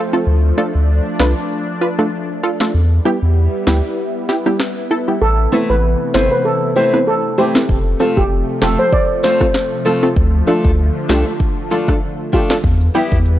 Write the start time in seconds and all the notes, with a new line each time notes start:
Already playing: F3 A3 C4, downlifter
0.13 A3 C4 F4 A4
0.27 D2 D4
0.58 A3 D4 F4 A4
0.75 D2
1.20 C2 A3 D4 F4 B4, cross-stick, snare
1.81 F4 B4
1.99 A3 D4 F4 A4, cross-stick
2.43 F4 A4
2.60 A3 D4 F4 A4, cross-stick, snare
2.74 E2 G3 B3 E4
3.05 G3 B3 E4 G4
3.22 E2
3.67 D2 G3 B3 E4 G4, cross-stick, snare
4.29 E4 G4, snare
4.46 G3 B3 E4 G4, cross-stick
4.59 cross-stick, snare
4.91 E4 A4
5.08 G3 B3 E4 G4
5.21 A1 C3 E3 A3 A4
5.52 A3 B3 C4 E4 A4 B4
5.70 A1 B4
6.14 G1 A3 B3 C4 E4 A4 B4 C5, cross-stick, snare
6.31 B4, muted steel-string acoustic guitar stroke
6.45 A4
6.76 A3 C4 E4 G4 B4 C5
6.94 B3 C4 E4 B4, cross-stick
7.07 A4
7.38 A3 C4 E4 G4 B4 C5
7.55 B3 C4 E4 A4, cross-stick, snare
7.69 F1 F3, kick
7.99 A3 C4 F4 A4
8.17 F1 G4, kick
8.61 E1 A3 C4 F4 G4 A4, cross-stick, snare
8.79 C5, muted steel-string acoustic guitar stroke
8.93 D5, kick
9.23 A3 C4 F4 A4 C5, snare
9.41 A3 C4 F4 A4, kick, cross-stick
9.54 cross-stick, snare
9.85 A3 C4 F4 A4
10.03 A3 C4 F4 A4
10.16 D2 D3, kick
10.47 A3 D4 F4 A4
10.65 D2, kick
11.08 C2 A3 D4 F4 G4 A4, cross-stick, snare
11.26 muted steel-string acoustic guitar stroke
11.40 kick
11.70 A3 D4 F4 A4
11.88 A3 D4 F4 A4, kick, cross-stick
12.32 A3 D4 F4 G4 A4, kick
12.50 A3 D4 F4 A4, cross-stick, snare
12.64 E2 E3 G3 B3, kick, closed hi-hat
12.81 closed hi-hat
12.94 G3 B3 E4 G4, closed hi-hat
13.12 E2, kick
13.26 closed hi-hat